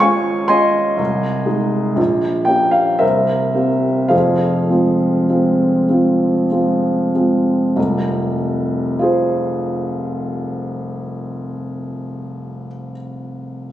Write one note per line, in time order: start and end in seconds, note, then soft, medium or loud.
0.00 1.02 C#2 medium
0.00 0.02 G#3 medium
0.00 0.46 G#3 medium
0.00 0.03 C#4 medium
0.00 0.46 C#4 medium
0.00 0.03 F4 medium
0.00 0.46 F4 medium
0.00 1.01 F5 medium
0.00 0.49 G#5 medium
0.00 1.02 C#6 loud
0.00 1.01 D#6 loud
0.00 1.02 F6 loud
0.48 0.94 G#3 soft
0.48 0.95 C#4 medium
0.48 0.95 F4 medium
0.48 2.45 D#5 medium
0.48 2.44 G#5 medium
0.48 2.48 C6 loud
0.97 1.46 C2 medium
1.46 1.93 G#3 medium
1.46 1.93 D#4 medium
1.46 1.93 G#4 medium
1.96 2.46 A#1 medium
2.45 2.97 A#3 soft
2.45 2.97 C#4 soft
2.45 2.97 G4 medium
2.45 2.73 G5 medium
2.71 3.00 F5 medium
2.99 3.54 C2 medium
2.99 4.07 A#4 medium
2.99 4.07 C5 medium
2.99 4.10 E5 medium
3.54 4.07 A#3 soft
3.54 4.07 C4 soft
3.54 4.08 G4 soft
4.09 4.67 F1 medium
4.09 4.68 F2 medium
4.09 6.46 G#4 medium
4.09 6.46 C5 medium
4.09 6.49 F5 medium
4.70 5.25 G#3 soft
4.70 5.25 C4 soft
4.70 5.25 F4 soft
5.29 5.85 G#3 soft
5.29 5.85 C4 soft
5.29 5.85 F4 soft
5.89 6.47 G#3 soft
5.89 6.47 C4 soft
5.89 6.47 F4 soft
6.51 7.10 G#3 soft
6.51 7.11 C4 soft
6.51 7.11 F4 soft
7.15 7.73 G#3 soft
7.15 7.73 C4 soft
7.15 7.73 F4 soft
7.76 12.67 F1 medium
7.76 12.66 C2 medium
8.99 12.92 F4 medium
8.99 12.93 G#4 medium
9.03 12.94 C5 medium